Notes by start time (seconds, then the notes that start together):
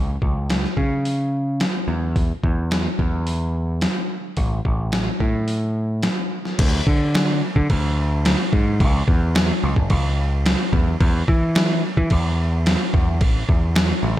Already playing: C#2
0.22 C#2, kick
0.50 snare, open hi-hat
0.64 snare
0.77 C#3, kick
1.05 open hi-hat
1.60 snare, open hi-hat
1.88 E2
2.16 kick, open hi-hat
2.44 E2, kick
2.71 snare, open hi-hat
2.99 E2, kick
3.27 open hi-hat
3.81 snare, open hi-hat
4.37 A1, kick, open hi-hat
4.65 A1, kick
4.92 snare, open hi-hat
5.20 A2, kick
5.48 open hi-hat
6.03 snare, open hi-hat
6.45 snare
6.59 D2, kick, crash
6.87 D3, kick
7.14 snare, crash
7.56 D3, kick
7.70 D2, kick, crash
8.25 snare, crash
8.53 G#2, kick
8.80 C#2, kick, crash
9.08 E2, kick
9.35 snare, crash
9.64 C#2
9.76 F#1, kick
9.90 C#2, kick, crash
10.46 snare, crash
10.73 E2, kick
11.00 E2, kick, crash
11.28 E3, kick
11.55 snare, crash
11.97 E3, kick
12.10 E2, kick, crash
12.66 snare, crash
12.94 E2, kick
13.21 A1, kick, crash
13.49 E2, kick
13.76 snare, crash
14.03 A1